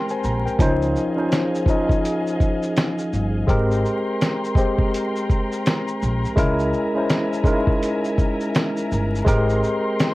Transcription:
0.00 0.16 G#3 medium
0.00 0.17 C4 medium
0.00 0.18 G4 medium
0.00 0.46 A#4 medium
0.00 0.57 A#4 medium
0.00 0.11 C5 medium
0.00 0.46 G5 medium
0.00 0.57 G5 medium
0.00 0.55 A#5 medium
0.00 0.57 C6 medium
0.09 0.23 C5 medium
0.09 0.23 G#5 medium
0.09 shaker medium
0.24 0.44 A#1 medium
0.24 0.45 A#5 medium
0.24 shaker medium
0.46 0.80 A#4 medium
0.46 0.80 G5 medium
0.46 shaker soft
0.59 0.93 C#2 loud
0.59 1.14 F3 loud
0.59 1.14 C#4 medium
0.59 1.15 D#4 loud
0.59 3.45 G#4 medium
0.59 1.15 C5 loud
0.59 3.45 D#5 medium
0.59 3.45 F5 medium
0.59 3.45 G#5 medium
0.59 kick loud
0.59 closed hi-hat medium
0.59 shaker medium
0.82 shaker soft
0.96 shaker soft
1.16 1.65 F3 medium
1.16 1.65 C#4 medium
1.16 1.66 D#4 medium
1.16 1.66 C5 medium
1.32 snare loud
1.32 closed hi-hat medium
1.32 shaker medium
1.55 shaker medium
1.66 3.06 F3 medium
1.66 3.07 C#4 medium
1.66 3.07 D#4 medium
1.66 kick loud
1.66 shaker medium
1.71 3.08 D#5 medium
1.89 kick medium
1.89 shaker soft
2.05 closed hi-hat medium
2.05 shaker medium
2.27 shaker soft
2.40 kick medium
2.40 shaker medium
2.63 shaker medium
2.77 snare loud
2.77 closed hi-hat medium
2.77 shaker medium
2.99 shaker soft
3.13 3.47 G1 loud
3.13 shaker medium
3.47 3.82 G#1 loud
3.47 4.52 G#3 loud
3.47 4.52 C4 loud
3.47 4.53 G4 loud
3.47 10.14 A#4 medium
3.47 4.53 A#4 loud
3.47 6.35 G5 medium
3.47 10.14 A#5 medium
3.47 6.34 C6 medium
3.47 kick loud
3.47 closed hi-hat medium
3.47 shaker medium
3.71 shaker soft
3.85 shaker soft
4.21 snare loud
4.21 closed hi-hat medium
4.21 shaker medium
4.44 shaker medium
4.55 5.95 G#3 medium
4.55 5.95 C4 medium
4.55 5.96 G4 medium
4.55 5.96 C5 medium
4.55 kick loud
4.55 shaker soft
4.78 kick medium
4.94 closed hi-hat medium
4.94 shaker medium
5.16 shaker soft
5.29 kick medium
5.29 shaker soft
5.52 shaker medium
5.66 snare loud
5.66 closed hi-hat medium
5.66 shaker medium
5.88 shaker medium
6.02 6.23 A#1 loud
6.02 shaker medium
6.25 shaker soft
6.36 6.72 C#2 loud
6.36 6.91 G#3 loud
6.36 6.92 C#4 medium
6.36 6.93 E4 loud
6.36 6.93 A#4 loud
6.36 9.24 E5 medium
6.36 9.24 G#5 medium
6.36 kick loud
6.36 closed hi-hat medium
6.36 shaker medium
6.59 shaker soft
6.74 shaker soft
6.94 7.43 G#3 medium
6.94 7.43 C#4 medium
6.94 7.44 E4 medium
6.94 7.45 C5 medium
7.10 snare loud
7.10 closed hi-hat medium
7.10 shaker medium
7.33 shaker medium
7.44 8.84 G#3 medium
7.44 8.84 C#4 medium
7.44 7.54 D#4 medium
7.44 8.85 A#4 medium
7.44 kick loud
7.44 shaker soft
7.53 8.88 E4 medium
7.67 kick medium
7.83 closed hi-hat medium
7.83 shaker medium
8.05 shaker medium
8.18 kick medium
8.18 shaker soft
8.41 shaker medium
8.55 snare loud
8.55 closed hi-hat medium
8.55 shaker medium
8.77 shaker medium
8.92 9.25 G1 loud
8.92 shaker medium
9.15 shaker soft
9.25 9.61 G#1 loud
9.25 10.14 G#3 loud
9.25 10.14 C4 medium
9.25 10.14 G4 loud
9.25 10.14 A#4 loud
9.25 10.14 G5 medium
9.25 10.14 C6 loud
9.25 kick loud
9.25 closed hi-hat medium
9.25 shaker medium
9.49 shaker soft
9.64 shaker soft
10.00 snare loud
10.00 closed hi-hat medium
10.00 shaker medium

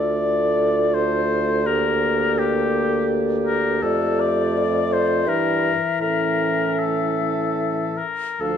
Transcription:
0.00 3.80 D2 soft
0.00 1.68 A3 soft
0.00 1.62 F4 soft
0.00 0.96 D5 soft
0.00 3.79 D5 soft
0.94 1.68 C5 soft
1.66 3.85 A#3 soft
1.66 4.58 G4 soft
1.66 2.40 A#4 soft
2.39 3.10 G4 soft
3.44 3.84 A#4 soft
3.82 5.29 F2 soft
3.82 5.27 A3 soft
3.82 4.22 A4 soft
3.82 5.29 D5 soft
4.20 4.95 D5 medium
4.57 5.29 F4 soft
4.93 5.30 C5 soft
5.27 5.75 G2 soft
5.27 8.00 E3 soft
5.27 5.75 E4 soft
5.27 6.01 A#4 soft
5.27 8.04 E5 soft
6.01 8.00 A2 soft
6.01 8.01 C#4 soft
6.01 6.81 A#4 soft
6.79 8.00 A4 soft
7.98 8.43 A#4 soft
8.40 8.57 D2 soft
8.40 8.57 F3 soft
8.40 8.57 D4 soft
8.40 8.57 A4 soft
8.40 8.57 F5 soft

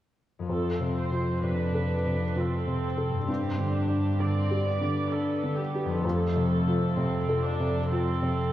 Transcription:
0.39 3.32 F2 soft
0.39 3.13 C4 soft
0.39 3.28 F4 soft
0.44 3.30 A4 soft
0.48 3.24 F2 soft
0.48 3.25 F2 soft
0.48 1.39 C4 soft
0.48 0.93 A4 soft
0.80 1.31 C3 soft
0.97 1.43 C5 soft
1.12 1.62 F4 soft
1.43 1.93 C3 soft
1.43 2.36 D4 soft
1.43 2.35 B4 soft
1.74 2.24 A4 soft
2.06 2.55 C3 soft
2.36 3.27 C4 soft
2.36 2.85 F4 soft
2.36 3.29 A4 soft
2.67 3.16 C3 soft
2.98 3.28 A4 soft
3.10 5.98 G2 soft
3.14 5.89 C4 soft
3.19 6.02 D4 soft
3.23 6.04 G4 soft
3.28 5.99 G2 soft
3.28 3.73 C4 soft
3.28 4.18 G4 soft
3.58 4.08 D3 soft
3.73 4.20 D4 soft
3.89 4.38 D4 soft
4.20 4.69 D3 soft
4.20 4.65 C4 soft
4.20 5.11 D5 soft
4.51 4.99 G4 soft
4.65 6.03 B3 soft
4.81 5.30 D3 soft
5.10 5.61 D4 soft
5.10 5.57 A4 soft
5.44 5.92 D3 soft
5.57 6.03 G4 soft
5.75 6.04 G4 soft
5.85 8.53 F2 soft
5.90 8.53 C4 soft
5.94 8.53 F4 soft
5.99 6.96 A3 soft
5.99 8.53 A4 soft
5.99 7.85 A4 soft
6.04 8.53 F2 soft
6.36 6.85 C3 soft
6.67 7.16 F4 soft
6.96 7.46 C3 soft
6.96 7.43 C4 soft
7.29 7.77 A4 soft
7.43 7.89 D4 soft
7.60 8.08 C3 soft
7.90 8.53 C4 soft
7.90 8.40 F4 soft
7.90 8.53 A4 soft
8.22 8.53 C3 soft

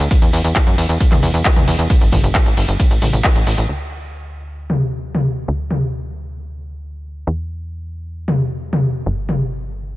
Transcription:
0.11 kick loud
0.11 closed hi-hat loud
0.11 ride medium
0.11 tambourine soft
0.22 0.31 E2 medium
0.22 closed hi-hat soft
0.22 tambourine soft
0.33 0.42 E2 loud
0.33 open hi-hat loud
0.33 tambourine medium
0.44 0.54 E2 medium
0.44 closed hi-hat soft
0.44 tambourine soft
0.56 kick loud
0.56 clap loud
0.56 closed hi-hat loud
0.56 ride medium
0.56 tambourine soft
0.67 0.76 F#2 medium
0.67 closed hi-hat soft
0.67 tambourine soft
0.78 0.87 E2 loud
0.78 open hi-hat loud
0.78 tambourine medium
0.89 0.98 E2 medium
0.89 closed hi-hat soft
0.89 tambourine soft
1.00 kick loud
1.00 closed hi-hat loud
1.00 ride medium
1.00 tambourine soft
1.12 1.21 E2 medium
1.12 clap soft
1.12 closed hi-hat soft
1.12 mid tom medium
1.12 tambourine soft
1.23 1.32 E2 loud
1.23 open hi-hat loud
1.23 tambourine medium
1.34 1.43 E2 loud
1.34 closed hi-hat soft
1.34 tambourine soft
1.45 kick loud
1.45 clap loud
1.45 closed hi-hat loud
1.45 ride medium
1.45 tambourine soft
1.56 1.66 E2 medium
1.56 closed hi-hat soft
1.56 mid tom medium
1.56 tambourine soft
1.68 1.77 E2 loud
1.68 open hi-hat loud
1.68 tambourine medium
1.79 1.88 E2 medium
1.79 closed hi-hat soft
1.79 tambourine soft
1.90 kick loud
1.90 closed hi-hat medium
1.90 ride medium
1.90 tambourine soft
2.01 2.10 G1 medium
2.01 closed hi-hat soft
2.01 tambourine soft
2.12 2.22 G1 loud
2.12 kick medium
2.12 open hi-hat loud
2.12 mid tom medium
2.12 tambourine medium
2.24 2.33 G1 medium
2.24 closed hi-hat soft
2.24 tambourine soft
2.35 kick loud
2.35 clap loud
2.35 closed hi-hat loud
2.35 ride medium
2.35 tambourine soft
2.46 2.55 A1 medium
2.46 closed hi-hat soft
2.46 tambourine soft
2.57 2.66 G1 loud
2.57 open hi-hat loud
2.57 tambourine medium
2.68 2.78 G1 medium
2.68 closed hi-hat soft
2.68 tambourine soft
2.80 kick loud
2.80 closed hi-hat loud
2.80 ride medium
2.80 tambourine soft
2.91 3.00 A1 medium
2.91 closed hi-hat soft
2.91 tambourine soft
3.02 3.11 A1 loud
3.02 open hi-hat loud
3.02 mid tom medium
3.02 tambourine medium
3.13 3.22 A1 loud
3.13 closed hi-hat soft
3.13 tambourine soft
3.24 kick loud
3.24 clap loud
3.24 open hi-hat medium
3.24 ride medium
3.24 tambourine soft
3.35 3.45 A1 medium
3.35 closed hi-hat soft
3.35 tambourine soft
3.47 3.56 A1 loud
3.47 open hi-hat loud
3.47 tambourine medium
3.58 3.67 A1 medium
3.58 closed hi-hat soft
3.58 tambourine soft
3.69 5.46 D2 medium
4.70 mid tom medium
5.15 mid tom medium
5.48 7.25 D2 medium
5.71 mid tom medium
7.27 9.04 E2 medium
8.28 mid tom medium
8.73 mid tom medium
9.06 9.97 G1 medium
9.29 mid tom medium

